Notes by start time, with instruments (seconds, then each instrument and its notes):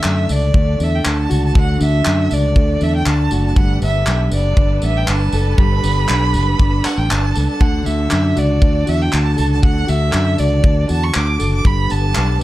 Already playing: steel-string acoustic guitar D3 D4, string section D3 D4 F#4 A4, violin E5
0.03 fingered electric bass F#2, steel-string acoustic guitar A3, clap
0.29 fingered electric bass C#2, steel-string acoustic guitar D4, violin D5, tambourine
0.54 fingered electric bass D2, steel-string acoustic guitar A3, kick
0.80 fingered electric bass E2, steel-string acoustic guitar D4, violin E5, tambourine
0.95 violin G5
1.05 fingered electric bass D2, steel-string acoustic guitar A3, violin A5, clap
1.30 fingered electric bass C#2, steel-string acoustic guitar F#4, tambourine
1.46 violin A5
1.55 fingered electric bass D2, steel-string acoustic guitar D3, violin F#5, kick
1.80 fingered electric bass D2, steel-string acoustic guitar D4, violin E5, tambourine
2.05 fingered electric bass F#2, steel-string acoustic guitar A3, clap
2.31 fingered electric bass C#2, steel-string acoustic guitar D4, violin D5, tambourine
2.56 fingered electric bass D2, steel-string acoustic guitar A3, kick
2.81 fingered electric bass E2, steel-string acoustic guitar D4, violin E5, tambourine
2.96 violin G5
3.06 fingered electric bass D2, steel-string acoustic guitar A3, violin A5, clap
3.31 fingered electric bass F#1, steel-string acoustic guitar F#4, tambourine
3.46 violin A5
3.55 fingered electric bass G1, steel-string acoustic guitar G3, string section G3 B4, violin F#5, kick
3.82 fingered electric bass G1, steel-string acoustic guitar B3, violin E5, tambourine
4.06 fingered electric bass B1, steel-string acoustic guitar D4, clap
4.31 fingered electric bass F#1, steel-string acoustic guitar B3, violin D5, tambourine
4.57 fingered electric bass G1, steel-string acoustic guitar D4, kick
4.82 fingered electric bass A1, steel-string acoustic guitar B3, violin E5, tambourine
4.97 violin G5
5.08 fingered electric bass G1, steel-string acoustic guitar D4, violin A5, clap
5.33 fingered electric bass F#1, steel-string acoustic guitar A4, tambourine
5.58 fingered electric bass G1, steel-string acoustic guitar G3, violin B5, kick
5.84 fingered electric bass G1, steel-string acoustic guitar B3, tambourine
6.08 fingered electric bass B1, steel-string acoustic guitar D4, clap
6.34 fingered electric bass F#1, steel-string acoustic guitar B3, tambourine
6.59 fingered electric bass G1, steel-string acoustic guitar D4, kick
6.85 steel-string acoustic guitar B3, violin F#5, muted fingered electric bass stroke, clap, tambourine
6.98 fingered electric bass A1, violin G5
7.10 fingered electric bass G1, steel-string acoustic guitar D4, violin A5, clap
7.35 fingered electric bass C#2, steel-string acoustic guitar A4, tambourine
7.49 violin A5
7.60 fingered electric bass D2, string section D3 F#4, steel-string acoustic guitar D3, violin F#5, kick
7.86 fingered electric bass D2, steel-string acoustic guitar F#4, violin E5, tambourine
8.11 fingered electric bass F#2, steel-string acoustic guitar D4, clap
8.36 fingered electric bass C#2, steel-string acoustic guitar F#4, violin D5, tambourine
8.62 fingered electric bass D2, steel-string acoustic guitar D4, kick
8.86 fingered electric bass E2, steel-string acoustic guitar F#4, violin E5, tambourine
9.02 violin G5
9.12 fingered electric bass D2, steel-string acoustic guitar D4, violin A5, clap
9.36 fingered electric bass C#2, steel-string acoustic guitar A4, tambourine
9.53 violin A5
9.63 fingered electric bass D2, steel-string acoustic guitar D3, violin F#5, kick
9.87 fingered electric bass D2, steel-string acoustic guitar F#4, violin E5, tambourine
10.13 fingered electric bass F#2, steel-string acoustic guitar D4, clap
10.38 fingered electric bass C#2, steel-string acoustic guitar F#4, violin D5, tambourine
10.63 fingered electric bass D2, steel-string acoustic guitar D4, kick
10.89 fingered electric bass E2, steel-string acoustic guitar F#4, violin A5, tambourine
11.04 violin C#6
11.14 fingered electric bass D2, steel-string acoustic guitar D4, violin D6, clap
11.39 fingered electric bass F#1, steel-string acoustic guitar A4, tambourine
11.53 violin D6
11.64 fingered electric bass G1, string section G3 D4 A4 B4, steel-string acoustic guitar G3, violin B5, kick
11.89 fingered electric bass G1, steel-string acoustic guitar B3, violin A5, tambourine
12.15 fingered electric bass B1, steel-string acoustic guitar D4, clap